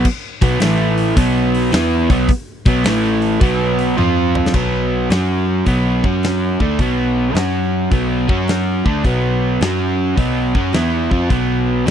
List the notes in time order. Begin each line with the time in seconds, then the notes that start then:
0.05 kick, crash
0.41 B1 B2 F#3 B3, kick, open hi-hat
0.60 A1 A2 E3 A3, snare, open hi-hat
0.98 open hi-hat
1.16 B1 B2 F#3 B3, kick, open hi-hat
1.55 open hi-hat
1.72 E2 E3 B3 E4, snare, open hi-hat
2.10 B1 B2 F#3 B3, kick, open hi-hat
2.29 kick, open hi-hat
2.66 B1 B2 F#3 B3, kick, open hi-hat
2.84 A1 A2 E3 A3, snare, open hi-hat
3.22 open hi-hat
3.41 B1 B2 F#3 B3, kick, open hi-hat
3.79 open hi-hat
3.97 F2 F3 C4 F4, high tom
4.35 mid tom
4.46 snare
4.54 B1 B2 F#3 B3, kick, crash
5.10 F#2 F#3 C#4 F#4, snare, open hi-hat
5.66 B1 B2 F#3 B3, kick, open hi-hat
6.04 F#2 F#3 C#4 F#4, kick
6.23 snare, open hi-hat
6.60 D2 D3 A3 D4, kick
6.79 B1 B2 F#3 B3, kick, open hi-hat
7.35 F#2 F#3 C#4 F#4, snare, open hi-hat
7.91 B1 B2 F#3 B3, kick, open hi-hat
8.29 F#2 F#3 C#4 F#4, kick
8.48 snare, open hi-hat
8.86 D2 D3 A3 D4, kick
9.04 B1 B2 F#3 B3, kick, open hi-hat
9.61 F#2 F#3 C#4 F#4, snare, open hi-hat
10.17 B1 B2 F#3 B3, kick, open hi-hat
10.55 F#2 F#3 C#4 F#4, kick
10.73 E2 E3 B3 E4, snare, open hi-hat
11.11 F2 F3 C4 F4, kick
11.30 B1 B2 F#3 B3, kick, open hi-hat
11.86 F#2 F#3 C#4, open hi-hat